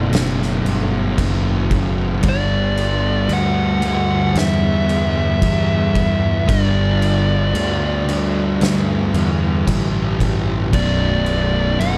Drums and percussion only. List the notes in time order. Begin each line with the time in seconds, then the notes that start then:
0.13 snare, crash
0.42 snare
0.66 crash
1.18 kick, crash
1.71 kick, crash
2.23 kick, crash
2.77 crash
3.29 crash
3.82 crash
4.35 snare, crash
4.89 crash
5.42 kick, crash
5.95 kick, crash
6.49 kick, crash
7.02 crash
7.55 crash
8.09 crash
8.61 snare, crash
9.14 crash
9.67 kick, crash
10.20 kick, crash
10.73 kick, crash
11.26 crash
11.80 crash